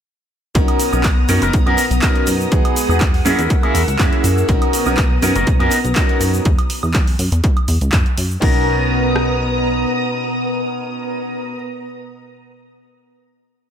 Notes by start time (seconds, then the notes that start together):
0.55 B1 B3 C#4 D#4 F#4 A#4 A#5 D#6, muted clean electric guitar stroke, kick, closed hi-hat, cabasa, shaker
0.68 muted clean electric guitar stroke, closed hi-hat, high woodblock
0.80 muted clean electric guitar stroke, open hi-hat, cabasa, shaker
0.92 B1 C#4 D#4 F#4 A#4, cabasa, high woodblock, shaker
1.04 kick, clap, closed hi-hat, cabasa, shaker
1.29 F#2 C#4 D#4 F#4 A#4, muted clean electric guitar stroke, open hi-hat, cabasa, shaker
1.42 F#1 B3 D#4 F#4 A#4, closed hi-hat, cabasa, shaker
1.53 B1, kick, closed hi-hat, cabasa, shaker
1.66 F#2 B3 C#4 D#4 F#4 A#4, closed hi-hat, high woodblock
1.78 open hi-hat, cabasa, shaker
1.91 B1, closed hi-hat, cabasa, shaker
2.02 B3 C#4 D#4 F#4 A#4, kick, clap, closed hi-hat, cabasa, shaker
2.15 closed hi-hat
2.27 F#2, open hi-hat, cabasa, shaker
2.41 cabasa, shaker
2.51 E2 B3 D#4 F#4 G#4 F#5, muted clean electric guitar stroke, kick, closed hi-hat, cabasa, shaker
2.65 closed hi-hat, high woodblock
2.76 muted clean electric guitar stroke, open hi-hat, cabasa, shaker
2.89 E2 B3 D#4 F#4 G#4, cabasa, high woodblock, shaker
3.01 kick, clap, closed hi-hat, cabasa, shaker
3.14 open hi-hat
3.25 F#2 A#3 C#4 E4 F#4 G#4 A#4 E6, open hi-hat, cabasa, shaker
3.39 E2, closed hi-hat, cabasa, shaker
3.50 kick, closed hi-hat, cabasa, shaker
3.63 A#3 C#4 E4 F#4 G#4 A#4, closed hi-hat, high woodblock
3.75 E2, open hi-hat, cabasa, shaker
3.88 C#2, closed hi-hat, cabasa, shaker
3.99 F#2 A#3 C#4 E4 F#4 G#4 A#4, kick, clap, closed hi-hat, cabasa, shaker
4.13 closed hi-hat
4.24 F#2, open hi-hat, cabasa, shaker
4.38 cabasa, shaker
4.48 B1 B3 C#4 D#4 F#4 A#4 A#5 D#6, muted clean electric guitar stroke, kick, closed hi-hat, cabasa, shaker
4.61 muted clean electric guitar stroke, closed hi-hat, high woodblock
4.73 muted clean electric guitar stroke, open hi-hat, cabasa, shaker
4.86 B1 C#4 D#4 F#4 A#4, cabasa, high woodblock, shaker
4.97 kick, clap, closed hi-hat, cabasa, shaker
5.22 F#2 C#4 D#4 F#4 A#4, muted clean electric guitar stroke, open hi-hat, cabasa, shaker
5.35 F#1 B3 D#4 F#4 A#4, closed hi-hat, cabasa, shaker
5.47 B1, kick, closed hi-hat, cabasa, shaker
5.60 F#2 B3 C#4 D#4 F#4 A#4, closed hi-hat, high woodblock
5.71 open hi-hat, cabasa, shaker
5.84 B1, closed hi-hat, cabasa, shaker
5.96 B3 C#4 D#4 F#4 A#4, kick, clap, closed hi-hat, cabasa, shaker
6.09 closed hi-hat
6.21 F#2, open hi-hat, cabasa, shaker
6.34 cabasa, shaker
6.45 E2, kick, closed hi-hat, cabasa
6.59 closed hi-hat, high woodblock
6.70 open hi-hat, cabasa
6.83 E2, cabasa, high woodblock
6.94 kick, clap, closed hi-hat, cabasa
7.07 open hi-hat
7.19 F#2, open hi-hat, cabasa
7.32 E2, closed hi-hat, cabasa
7.44 kick, closed hi-hat, cabasa
7.57 closed hi-hat, high woodblock
7.68 E2, open hi-hat, cabasa
7.81 C#2, closed hi-hat, cabasa
7.92 F#2, kick, clap, closed hi-hat, cabasa
8.06 closed hi-hat
8.18 F#2, open hi-hat, cabasa
8.31 cabasa
8.40 B1 B3 C#4 D#4 F#4 A#4 A#5 D#6, kick, crash
9.16 cross-stick